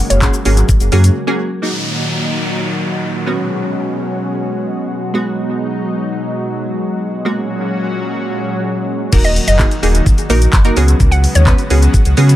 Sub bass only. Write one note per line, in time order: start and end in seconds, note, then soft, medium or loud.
0.11 0.28 F#1 loud
0.46 0.63 G#1 loud
0.81 0.90 F#1 medium
0.92 1.10 F#2 loud
9.13 9.39 D#1 loud
9.48 9.65 F#1 medium
9.83 10.01 D#1 medium
10.30 10.47 A#1 loud
10.53 10.71 F#1 loud
10.77 10.94 C#2 loud
11.00 11.27 C#2 loud
11.35 11.53 D#2 loud
11.70 11.88 C#2 medium
12.06 12.15 C#2 loud
12.18 12.35 C#3 loud